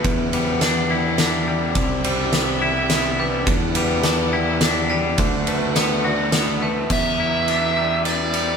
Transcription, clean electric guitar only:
X:1
M:3/4
L:1/8
Q:1/4=105
K:Em
V:1 name="Clean electric guitar"
E,, G, D E D G, | C, G, B, E B, G, | E,, G, D E D G, | D, A, B, F B, A, |
E,, E D G, E, G, |]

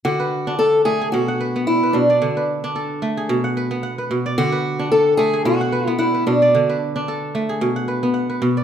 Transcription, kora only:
X:1
M:4/4
L:1/16
Q:"Swing 16ths" 1/4=111
K:Dlyd
V:1 name="Kora"
z B3 A3 G2 f B3 B2 d- | d B3 A3 G2 f B2 f B2 d- | d B3 A3 G2 f B2 f B2 d- | d B3 A3 G2 f B2 f B2 d |]
V:2 name="Kora" clef=bass
D,2 z D2 z A,2 B,,2 z B,2 z B,,2 | D,2 z D2 z A,2 B,,2 z B,2 z B,,2 | D,2 z D2 z A,2 B,,2 z B,2 z B,,2 | D,2 z D2 z A,2 B,,2 z B,2 z B,,2 |]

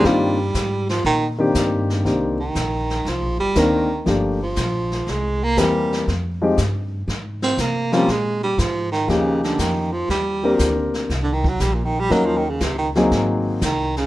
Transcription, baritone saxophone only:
X:1
M:4/4
L:1/16
Q:"Swing" 1/4=119
K:Cm
V:1 name="Baritone saxophone" clef=bass
G,6 F,2 E,2 z6 | z2 E,6 F,2 G,2 E,4 | z2 F,6 A,2 B,2 G,4 | z8 z2 C2 B,2 G,2 |
A,2 G,2 F,2 E,2 _D,2 =D,2 E,2 F,2 | G,6 z3 D, E, ^F, G, B,, E, G, | _G, F, E, _D, C, E, z6 E,2 D,2 |]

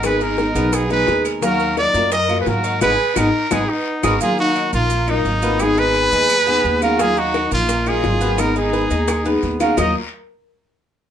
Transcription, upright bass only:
X:1
M:4/4
L:1/8
Q:1/4=172
K:Ebm
V:1 name="Upright bass" clef=bass
A,,,3 C,,3 E,,2- | E,,3 G,,3 A,,2 | A,,, z A,,, z A,,, z2 A,,, | z3 B,,,3 A,,,2- |
A,,,3 E,,3 E,,2- | E,,3 B,,,3 A,,,2- | A,,,3 E,,3 E,,2 | E,, z6 z |]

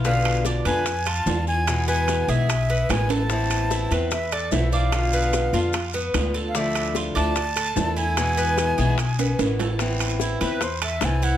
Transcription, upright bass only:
X:1
M:4/4
L:1/8
Q:1/4=148
K:Am
V:1 name="Upright bass" clef=bass
B,,,3 F,,3 E,,2- | E,,3 B,,,3 A,,,2- | A,,,3 E,,3 B,,,2- | B,,,3 F,,3 D,,2- |
D,,3 D,,3 E,,2- | E,,3 B,,,3 A,,,2- | A,,,3 E,,3 C,,2 |]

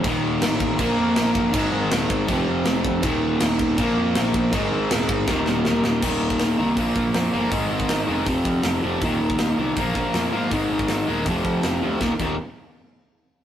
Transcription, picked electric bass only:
X:1
M:4/4
L:1/8
Q:1/4=160
K:Ablyd
V:1 name="Picked electric bass" clef=bass
E,,,2 =A,,,2 B,,, F,, B,,, G,,, | A,,, A,,, E,,, A,,, F,,, F,,, F,,, F,,, | E,,,2 E,,,2 B,,, F,, B,,, B,,, | A,,, A,,, E,,, A,,, E,,, E,,, E,,, E,,, |
E,,, E,,, E,,, C,, B,,, B,,, F,, G,,, | A,,, A,,, A,,, F,,, F,,, F,, F,,, F,,, | E,,, E,,, E,,, C,, B,,, B,,, F,, A,, | A,,, A,,, A,,, E,,, F,,, F,, F,,, D,, |
E,,, E,,, z6 |]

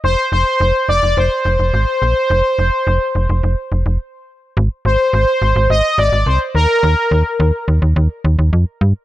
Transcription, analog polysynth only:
X:1
M:4/4
L:1/8
Q:1/4=106
K:Fdor
V:1 name="Analog polysynth"
c c2 d c4- | c6 z2 | z c3 e d c B- | B3 z4 z |]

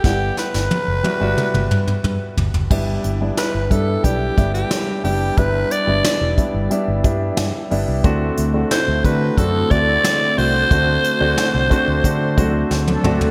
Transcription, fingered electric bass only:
X:1
M:4/4
L:1/16
Q:1/4=90
K:Em
V:1 name="Fingered electric bass" clef=bass
G,,,2 z G,,, z F,,, z G,,, z G,,, G,,2 G,, z G,,, F,,, | G,,,2 G,,,2 z G,,, G,,2 B,,,2 G,,,2 z2 F,,,2 | G,,,2 z G,,, z E,,, z G,,, z G,,, G,,2 G,, z G,,, C,, | D,,2 D,,2 z D,, D,2 F,,2 D,,2 z2 C,,2 |
D,,2 z D,, z C,, z D,, D,2 D,,2 D,,2 D,, z |]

